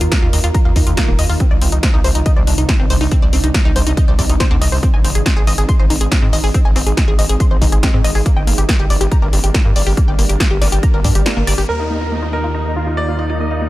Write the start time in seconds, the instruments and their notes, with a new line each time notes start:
Already playing: ambient pad D#3 D#4 F4 A#4
0.01 analog synth bass D#2, synth arpeggio sound F4, closed hi-hat
0.12 synth arpeggio sound A#3, kick, snare, closed hi-hat
0.22 analog synth bass D#2, synth arpeggio sound F4
0.33 analog synth bass D#2, synth arpeggio sound D#5, open hi-hat
0.44 analog synth bass D#2, synth arpeggio sound F4, closed hi-hat
0.54 synth arpeggio sound A#5, kick, closed hi-hat
0.65 analog synth bass D#2, synth arpeggio sound F5
0.76 analog synth bass D#2, synth arpeggio sound D#4, kick, open hi-hat
0.87 analog synth bass D#2, synth arpeggio sound F4, closed hi-hat
0.97 synth arpeggio sound A#3, kick, snare, closed hi-hat
1.08 analog synth bass D#1, synth arpeggio sound A#3
1.19 analog synth bass D#2, synth arpeggio sound D#5, open hi-hat
1.29 analog synth bass D#2, synth arpeggio sound F4, open hi-hat
1.40 ambient pad C3 C4 D4, synth arpeggio sound C4, kick, closed hi-hat
1.51 analog synth bass C2, synth arpeggio sound D5
1.62 analog synth bass C2, synth arpeggio sound C4, open hi-hat
1.72 analog synth bass C2, synth arpeggio sound D#4, closed hi-hat
1.83 synth arpeggio sound C4, kick, snare, closed hi-hat
1.94 analog synth bass C2, synth arpeggio sound D#4
2.04 analog synth bass C2, synth arpeggio sound C5, open hi-hat
2.15 analog synth bass C2, synth arpeggio sound D#4, closed hi-hat
2.26 synth arpeggio sound D#5, kick, closed hi-hat
2.37 analog synth bass C2, synth arpeggio sound D5
2.47 analog synth bass C2, synth arpeggio sound D4, open hi-hat
2.58 analog synth bass C2, synth arpeggio sound D#4, closed hi-hat
2.69 synth arpeggio sound C4, kick, snare, closed hi-hat
2.79 analog synth bass G1, synth arpeggio sound C4
2.90 analog synth bass C2, synth arpeggio sound C5, open hi-hat
3.01 analog synth bass C2, synth arpeggio sound D#4, open hi-hat
3.12 synth arpeggio sound C4, kick, closed hi-hat
3.22 analog synth bass C2, synth arpeggio sound D5
3.33 analog synth bass C2, synth arpeggio sound C4, open hi-hat
3.44 analog synth bass C2, synth arpeggio sound D#4, closed hi-hat
3.54 synth arpeggio sound C4, kick, snare, closed hi-hat
3.65 analog synth bass C2, synth arpeggio sound D#4
3.76 analog synth bass C2, synth arpeggio sound C5, open hi-hat
3.86 analog synth bass C2, synth arpeggio sound D#4, closed hi-hat
3.97 synth arpeggio sound D#5, kick, closed hi-hat
4.08 analog synth bass C2, synth arpeggio sound D5
4.19 analog synth bass C2, synth arpeggio sound D5, kick, open hi-hat
4.29 analog synth bass C2, synth arpeggio sound D#4, closed hi-hat
4.40 synth arpeggio sound C5, kick, snare, closed hi-hat
4.51 analog synth bass D2, synth arpeggio sound C4
4.62 analog synth bass C2, synth arpeggio sound D#5, open hi-hat
4.72 analog synth bass C2, synth arpeggio sound C5, open hi-hat
4.83 ambient pad G#3 C4, synth arpeggio sound C4, kick, closed hi-hat
4.94 analog synth bass G#1, synth arpeggio sound G#5
5.04 analog synth bass G#1, synth arpeggio sound C4, open hi-hat
5.15 analog synth bass G#1, synth arpeggio sound G#4, closed hi-hat
5.26 synth arpeggio sound C4, kick, snare, closed hi-hat
5.37 analog synth bass G#1, synth arpeggio sound G#4
5.47 analog synth bass G#1, synth arpeggio sound D#5, open hi-hat
5.58 analog synth bass G#1, synth arpeggio sound G#4, closed hi-hat
5.69 synth arpeggio sound C6, kick, closed hi-hat
5.79 analog synth bass G#1, synth arpeggio sound C5
5.90 analog synth bass G#1, synth arpeggio sound D#4, open hi-hat
6.01 analog synth bass G#1, synth arpeggio sound G#4, closed hi-hat
6.12 synth arpeggio sound C4, kick, snare, closed hi-hat
6.22 analog synth bass G#2, synth arpeggio sound C4
6.33 analog synth bass G#1, synth arpeggio sound D#5, open hi-hat
6.44 analog synth bass G#1, synth arpeggio sound G#4, open hi-hat
6.54 synth arpeggio sound C4, kick, closed hi-hat
6.65 analog synth bass G#1, synth arpeggio sound G#5
6.76 analog synth bass G#1, synth arpeggio sound C4, open hi-hat
6.87 analog synth bass G#1, synth arpeggio sound G#4, closed hi-hat
6.97 synth arpeggio sound C4, kick, snare, closed hi-hat
7.08 analog synth bass G#1, synth arpeggio sound G#4
7.19 analog synth bass G#1, synth arpeggio sound D#5, open hi-hat
7.29 analog synth bass G#1, synth arpeggio sound G#4, closed hi-hat
7.40 synth arpeggio sound C6, kick, closed hi-hat
7.51 analog synth bass G#1, synth arpeggio sound C5
7.62 analog synth bass G#1, synth arpeggio sound D#4, kick, open hi-hat
7.72 analog synth bass G#1, synth arpeggio sound G#4, closed hi-hat
7.83 synth arpeggio sound C4, kick, snare, closed hi-hat
7.94 analog synth bass G#2, synth arpeggio sound C4
8.04 analog synth bass G#1, synth arpeggio sound D#5, open hi-hat
8.15 analog synth bass G#1, synth arpeggio sound G#4, open hi-hat
8.26 ambient pad G3 A#3 D4, synth arpeggio sound A#3, kick, closed hi-hat
8.36 analog synth bass G1, synth arpeggio sound G5
8.47 analog synth bass G1, synth arpeggio sound A#3, open hi-hat
8.58 analog synth bass G1, synth arpeggio sound G4, closed hi-hat
8.69 synth arpeggio sound A#3, kick, snare, closed hi-hat
8.79 analog synth bass G1, synth arpeggio sound G4
8.90 analog synth bass G1, synth arpeggio sound D5, open hi-hat
9.01 analog synth bass G1, synth arpeggio sound G4, closed hi-hat
9.11 synth arpeggio sound A#5, kick, closed hi-hat
9.22 analog synth bass G1, synth arpeggio sound A#4
9.33 analog synth bass G1, synth arpeggio sound D4, open hi-hat
9.44 analog synth bass G1, synth arpeggio sound G4, closed hi-hat
9.54 synth arpeggio sound A#3, kick, snare, closed hi-hat
9.65 analog synth bass G2, synth arpeggio sound A#3
9.76 analog synth bass G1, synth arpeggio sound D5, open hi-hat
9.87 analog synth bass G1, synth arpeggio sound G4, open hi-hat
9.97 synth arpeggio sound A#3, kick, closed hi-hat
10.08 analog synth bass G1, synth arpeggio sound G5
10.19 analog synth bass G1, synth arpeggio sound A#3, open hi-hat
10.29 analog synth bass G1, synth arpeggio sound G4, closed hi-hat
10.40 synth arpeggio sound A#3, kick, snare, closed hi-hat
10.51 analog synth bass G1, synth arpeggio sound G4
10.62 analog synth bass G1, synth arpeggio sound D5, snare, open hi-hat
10.72 analog synth bass G1, synth arpeggio sound G4, closed hi-hat
10.83 synth arpeggio sound A#5, kick, closed hi-hat
10.94 analog synth bass G1, synth arpeggio sound A#4
11.04 analog synth bass G2, synth arpeggio sound D4, kick, open hi-hat
11.15 analog synth bass G1, synth arpeggio sound G4, closed hi-hat
11.26 synth arpeggio sound A#3, snare, closed hi-hat
11.37 analog synth bass G1, synth arpeggio sound A#3
11.47 analog synth bass G1, synth arpeggio sound D5, open hi-hat
11.58 analog synth bass G1, synth arpeggio sound G4, open hi-hat
11.69 analog synth bass D#2, ambient pad D#3 D#4 F4 A#4, synth arpeggio sound A#3, grand piano A#4, supersaw synth A#4, crash, downlifter
11.79 supersaw synth D#4, synth arpeggio sound F5
11.90 synth arpeggio sound A#3, supersaw synth D#4
12.01 synth arpeggio sound F4, supersaw synth A#4
12.12 synth arpeggio sound A#3, supersaw synth D#4
12.22 supersaw synth D#4, synth arpeggio sound F4
12.33 supersaw synth D#4, grand piano A#4, synth arpeggio sound D#5
12.44 synth arpeggio sound F4
12.54 supersaw synth D#4, synth arpeggio sound A#5
12.65 supersaw synth D#4, synth arpeggio sound A#4
12.76 synth arpeggio sound D#4, supersaw synth F4
12.87 supersaw synth D#4, synth arpeggio sound F4
12.97 synth arpeggio sound A#3, supersaw synth D#4, grand piano D5
13.08 synth arpeggio sound A#3, supersaw synth F4
13.19 supersaw synth D#4, synth arpeggio sound D#5
13.30 supersaw synth D#4, synth arpeggio sound F4
13.40 synth arpeggio sound A#3, supersaw synth D#5
13.51 supersaw synth D#4, synth arpeggio sound F5
13.62 synth arpeggio sound A#3, supersaw synth D#4